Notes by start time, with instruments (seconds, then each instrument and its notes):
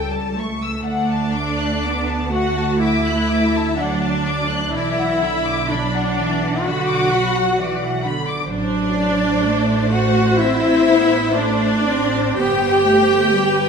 Already playing: double bass section C#2, cello section G3, viola section A4, violin section G5 A5
0.12 violin section A5
0.37 cello section A3, violin section C#6
0.61 violin section E6
0.85 double bass section D2, viola section D4, violin section D5 F#5
1.09 violin section A5
1.34 violin section D6
1.59 violin section F#6
1.83 cello section B3, violin section D6
2.08 violin section A5
2.32 cello section A3, viola section F#4, violin section F#5
2.58 violin section A5
2.81 viola section E4, violin section E5 D6
3.06 violin section F#6
3.30 violin section D6
3.54 violin section A5
3.77 cello section F#3, viola section D4, violin section D5 F#5
4.02 violin section A5
4.26 violin section D6
4.50 violin section F#6
4.74 double bass section B1, cello section E3, viola section E4, violin section D5 E5
4.99 violin section F#5
5.22 cello section D3, violin section B5
5.46 violin section D6
5.70 cello section F#3, viola section D4, violin section D5 B5
5.94 violin section F#5
6.18 cello section E3, violin section D5
6.42 violin section F#5
6.64 cello section D3, viola section F#4, violin section F#5 B5
6.89 violin section D6
7.11 cello section F#3, violin section B5
7.36 violin section F#5
7.58 cello section E3, violin section D5
7.82 violin section F#5
8.04 cello section D3, violin section B5
8.27 violin section D6
8.50 double bass section A1, cello section F#3, viola section D4, violin section C5 D5
9.45 cello section A3
9.92 viola section F#4, violin section F#5
10.40 cello section C4, viola section E4, violin section E5
10.88 cello section B3
11.36 cello section A3, viola section D4, violin section D5
11.86 cello section C4
12.37 double bass section G1, cello section B3, viola section G4, violin section G5
12.86 cello section A3
13.33 cello section G3, violin section B4